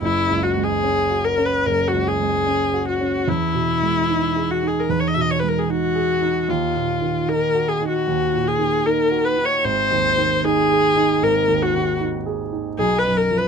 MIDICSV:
0, 0, Header, 1, 3, 480
1, 0, Start_track
1, 0, Tempo, 814111
1, 6, Time_signature, 4, 2, 24, 8
1, 2887, Tempo, 789474
1, 8105, End_track
2, 0, Start_track
2, 0, Title_t, "Viola"
2, 0, Program_c, 0, 41
2, 11, Note_on_c, 0, 64, 86
2, 253, Note_on_c, 0, 66, 68
2, 261, Note_off_c, 0, 64, 0
2, 373, Note_on_c, 0, 68, 77
2, 382, Note_off_c, 0, 66, 0
2, 736, Note_on_c, 0, 70, 78
2, 745, Note_off_c, 0, 68, 0
2, 858, Note_on_c, 0, 71, 75
2, 866, Note_off_c, 0, 70, 0
2, 979, Note_on_c, 0, 70, 80
2, 988, Note_off_c, 0, 71, 0
2, 1108, Note_on_c, 0, 66, 72
2, 1117, Note_off_c, 0, 70, 0
2, 1224, Note_on_c, 0, 68, 80
2, 1233, Note_off_c, 0, 66, 0
2, 1694, Note_off_c, 0, 68, 0
2, 1698, Note_on_c, 0, 66, 69
2, 1936, Note_on_c, 0, 64, 84
2, 1945, Note_off_c, 0, 66, 0
2, 2657, Note_on_c, 0, 66, 70
2, 2666, Note_off_c, 0, 64, 0
2, 2755, Note_on_c, 0, 68, 60
2, 2764, Note_off_c, 0, 66, 0
2, 2826, Note_on_c, 0, 70, 58
2, 2835, Note_off_c, 0, 68, 0
2, 2889, Note_on_c, 0, 71, 60
2, 2898, Note_off_c, 0, 70, 0
2, 2948, Note_on_c, 0, 73, 58
2, 2957, Note_off_c, 0, 71, 0
2, 2994, Note_on_c, 0, 75, 57
2, 3003, Note_off_c, 0, 73, 0
2, 3033, Note_on_c, 0, 76, 62
2, 3042, Note_off_c, 0, 75, 0
2, 3078, Note_on_c, 0, 75, 62
2, 3088, Note_off_c, 0, 76, 0
2, 3135, Note_on_c, 0, 73, 61
2, 3144, Note_off_c, 0, 75, 0
2, 3190, Note_on_c, 0, 71, 59
2, 3199, Note_off_c, 0, 73, 0
2, 3243, Note_on_c, 0, 70, 57
2, 3253, Note_off_c, 0, 71, 0
2, 3306, Note_on_c, 0, 68, 63
2, 3315, Note_off_c, 0, 70, 0
2, 3374, Note_on_c, 0, 66, 83
2, 3383, Note_off_c, 0, 68, 0
2, 3861, Note_on_c, 0, 65, 68
2, 3870, Note_off_c, 0, 66, 0
2, 4338, Note_on_c, 0, 70, 82
2, 4348, Note_off_c, 0, 65, 0
2, 4581, Note_on_c, 0, 68, 75
2, 4590, Note_off_c, 0, 70, 0
2, 4698, Note_off_c, 0, 68, 0
2, 4702, Note_on_c, 0, 66, 79
2, 5062, Note_on_c, 0, 68, 81
2, 5071, Note_off_c, 0, 66, 0
2, 5297, Note_on_c, 0, 70, 77
2, 5306, Note_off_c, 0, 68, 0
2, 5534, Note_on_c, 0, 71, 81
2, 5543, Note_off_c, 0, 70, 0
2, 5656, Note_on_c, 0, 73, 78
2, 5665, Note_off_c, 0, 71, 0
2, 5773, Note_on_c, 0, 72, 93
2, 5782, Note_off_c, 0, 73, 0
2, 6261, Note_on_c, 0, 68, 94
2, 6270, Note_off_c, 0, 72, 0
2, 6738, Note_on_c, 0, 70, 80
2, 6747, Note_off_c, 0, 68, 0
2, 6972, Note_on_c, 0, 66, 78
2, 6981, Note_off_c, 0, 70, 0
2, 7210, Note_off_c, 0, 66, 0
2, 7683, Note_on_c, 0, 68, 86
2, 7806, Note_on_c, 0, 71, 77
2, 7815, Note_off_c, 0, 68, 0
2, 7917, Note_on_c, 0, 70, 74
2, 7926, Note_off_c, 0, 71, 0
2, 8041, Note_on_c, 0, 71, 74
2, 8050, Note_off_c, 0, 70, 0
2, 8105, Note_off_c, 0, 71, 0
2, 8105, End_track
3, 0, Start_track
3, 0, Title_t, "Grand piano"
3, 0, Program_c, 1, 0
3, 0, Control_c, 1, 64, 127
3, 9, Note_on_c, 1, 30, 58
3, 18, Control_c, 1, 64, 0
3, 128, Control_c, 1, 64, 127
3, 173, Note_on_c, 1, 37, 41
3, 329, Note_on_c, 1, 56, 41
3, 428, Note_off_c, 1, 37, 0
3, 492, Note_on_c, 1, 61, 44
3, 586, Note_off_c, 1, 56, 0
3, 651, Note_on_c, 1, 66, 42
3, 748, Note_off_c, 1, 61, 0
3, 812, Note_on_c, 1, 61, 45
3, 909, Note_off_c, 1, 66, 0
3, 951, Note_off_c, 1, 30, 0
3, 976, Note_on_c, 1, 30, 47
3, 1070, Note_off_c, 1, 61, 0
3, 1136, Note_on_c, 1, 37, 40
3, 1298, Note_on_c, 1, 56, 39
3, 1392, Note_off_c, 1, 37, 0
3, 1454, Note_on_c, 1, 61, 42
3, 1552, Note_off_c, 1, 56, 0
3, 1615, Note_on_c, 1, 66, 45
3, 1708, Note_off_c, 1, 61, 0
3, 1774, Note_on_c, 1, 61, 42
3, 1868, Note_off_c, 1, 66, 0
3, 1909, Note_off_c, 1, 30, 0
3, 1931, Note_on_c, 1, 40, 57
3, 1932, Note_off_c, 1, 61, 0
3, 1942, Control_c, 1, 64, 0
3, 2027, Control_c, 1, 64, 127
3, 2090, Note_on_c, 1, 47, 43
3, 2254, Note_on_c, 1, 56, 42
3, 2348, Note_off_c, 1, 47, 0
3, 2413, Note_on_c, 1, 63, 44
3, 2510, Note_off_c, 1, 56, 0
3, 2572, Note_on_c, 1, 68, 41
3, 2668, Note_off_c, 1, 63, 0
3, 2729, Note_on_c, 1, 63, 44
3, 2825, Note_off_c, 1, 68, 0
3, 2864, Note_off_c, 1, 40, 0
3, 2886, Note_on_c, 1, 40, 49
3, 2982, Note_off_c, 1, 63, 0
3, 3047, Note_on_c, 1, 47, 42
3, 3209, Note_on_c, 1, 56, 43
3, 3304, Note_off_c, 1, 47, 0
3, 3367, Note_on_c, 1, 63, 43
3, 3466, Note_off_c, 1, 56, 0
3, 3530, Note_on_c, 1, 68, 45
3, 3626, Note_off_c, 1, 63, 0
3, 3690, Note_on_c, 1, 63, 46
3, 3788, Note_off_c, 1, 68, 0
3, 3828, Note_off_c, 1, 40, 0
3, 3852, Note_off_c, 1, 63, 0
3, 3854, Note_on_c, 1, 39, 59
3, 3863, Control_c, 1, 64, 0
3, 3979, Control_c, 1, 64, 127
3, 4016, Note_on_c, 1, 46, 45
3, 4177, Note_on_c, 1, 51, 44
3, 4271, Note_off_c, 1, 46, 0
3, 4339, Note_on_c, 1, 63, 47
3, 4433, Note_off_c, 1, 51, 0
3, 4499, Note_on_c, 1, 66, 42
3, 4596, Note_off_c, 1, 63, 0
3, 4662, Note_on_c, 1, 63, 48
3, 4756, Note_off_c, 1, 66, 0
3, 4795, Note_off_c, 1, 39, 0
3, 4820, Note_on_c, 1, 39, 51
3, 4916, Note_off_c, 1, 63, 0
3, 4975, Note_on_c, 1, 46, 43
3, 5133, Note_on_c, 1, 51, 42
3, 5230, Note_off_c, 1, 46, 0
3, 5290, Note_on_c, 1, 63, 44
3, 5388, Note_off_c, 1, 51, 0
3, 5453, Note_on_c, 1, 66, 45
3, 5546, Note_off_c, 1, 63, 0
3, 5608, Note_on_c, 1, 63, 44
3, 5709, Note_off_c, 1, 66, 0
3, 5750, Note_off_c, 1, 39, 0
3, 5772, Note_off_c, 1, 63, 0
3, 5774, Note_on_c, 1, 32, 62
3, 5784, Control_c, 1, 64, 0
3, 5897, Control_c, 1, 64, 127
3, 5936, Note_on_c, 1, 39, 45
3, 6099, Note_on_c, 1, 51, 44
3, 6195, Note_off_c, 1, 39, 0
3, 6258, Note_on_c, 1, 63, 51
3, 6355, Note_off_c, 1, 51, 0
3, 6417, Note_on_c, 1, 68, 45
3, 6513, Note_off_c, 1, 63, 0
3, 6574, Note_on_c, 1, 63, 50
3, 6672, Note_off_c, 1, 68, 0
3, 6712, Note_off_c, 1, 32, 0
3, 6733, Note_on_c, 1, 32, 54
3, 6830, Note_off_c, 1, 63, 0
3, 6891, Note_on_c, 1, 39, 46
3, 7047, Note_on_c, 1, 51, 42
3, 7146, Note_off_c, 1, 39, 0
3, 7207, Note_on_c, 1, 63, 47
3, 7303, Note_off_c, 1, 51, 0
3, 7366, Note_on_c, 1, 68, 49
3, 7462, Note_off_c, 1, 63, 0
3, 7525, Note_on_c, 1, 63, 46
3, 7622, Note_off_c, 1, 68, 0
3, 7661, Note_off_c, 1, 32, 0
3, 7683, Note_on_c, 1, 35, 60
3, 7685, Note_off_c, 1, 63, 0
3, 7698, Control_c, 1, 64, 0
3, 7808, Control_c, 1, 64, 127
3, 7845, Note_on_c, 1, 42, 45
3, 8002, Note_on_c, 1, 53, 41
3, 8101, Note_off_c, 1, 42, 0
3, 8105, Note_off_c, 1, 35, 0
3, 8105, Note_off_c, 1, 53, 0
3, 8105, End_track
0, 0, End_of_file